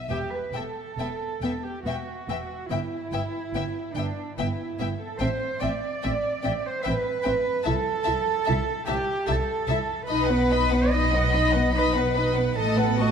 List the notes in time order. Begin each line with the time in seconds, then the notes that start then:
0.09 E1 B3 G4 E5 G5
0.32 B4
0.53 E1 B3 A4 E5 G5
0.98 E1 B3 E5 G5
1.42 E1 B3 E5 G5
1.64 G4
1.84 E1 B3 F#4 E5 G5
2.29 E1 B3 E5 G5
2.69 G1 B3 E4 E5 G5
3.12 G1 B3 E5 G5
3.54 G1 B3 E5 G5
3.96 G1 B3 D4 E5 G5
4.38 G1 B3 E4 E5 G5
4.80 G1 B3 E5 G5
5.01 A4
5.20 A1 C4 C5 E5 G5
5.60 A1 C4 D5 E5 G5
6.02 A1 C4 E5 G5
6.43 A1 C4 E5 G5
6.65 C5
6.84 A1 C4 B4 E5 G5
7.23 A1 C4 E5 G5
7.64 C2 E4 A4 E5 A5
8.04 C2 E4 E5 A5
8.45 E4 E5 A5
8.49 C2
8.86 C2 E4 G4 E5 A5
9.27 C2 E4 A4 E5 A5
9.67 C2 E4 E5 A5
10.08 B1 D#4 B4 D#5 B5
10.26 F#5
10.30 B3 B4
10.51 D#4 D#5 B5
10.72 B3 B4 F#5
10.91 D#4 D#5 B5
11.13 B3 B4 F#5
11.33 D#4 D#5 B5
11.52 B3 B4 F#5
11.73 D#4 B4 D#5 B5
11.95 B3 B4 F#5
12.15 D#4 D#5 B5
12.36 B3 B4 F#5
12.56 A1 A3 A4 D#5 A5
12.78 B3 B4 F#5
12.99 A3 F#4 D#5 A5